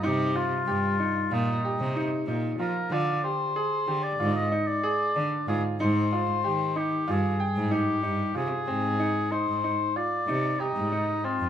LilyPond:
<<
  \new Staff \with { instrumentName = "Oboe" } { \time 9/8 \key aes \lydian \tempo 4. = 62 g'8 f'4. ees'4. r8 bes'8 | d''8 c''4~ c''16 d''8 ees''8 d''4~ d''16 aes'8 | c''4. g'8 aes'4 g'4 aes'8~ | aes'4 c''4 d''4 ees'4 f'8 | }
  \new Staff \with { instrumentName = "Grand piano" } { \time 9/8 \key aes \lydian ees'8 f'8 g'8 ees'8 f'8 g'8 ees'8 ees'8 f'8 | f'8 g'8 aes'8 g'8 f'8 ees'8 aes'8 d'8 f'8 | ees'8 f'8 g'8 ees'8 f'8 g''8 ees'8 ees'8 f'8 | c'8 ees'8 ees'8 ees'8 f'8 ees'8 g'8 ees'8 c'8 | }
  \new Staff \with { instrumentName = "Cello" } { \clef bass \time 9/8 \key aes \lydian c4 g,4 bes,8 r16 c8 r16 bes,8 f16 r16 | d8 r4 d8 aes,8 r4 d16 r16 aes,16 r16 | aes,4 ees4 g,8 r16 aes,8 r16 g,8 c16 r16 | aes,4~ aes,16 aes,8 r8. c8. aes,4 f,16 | }
>>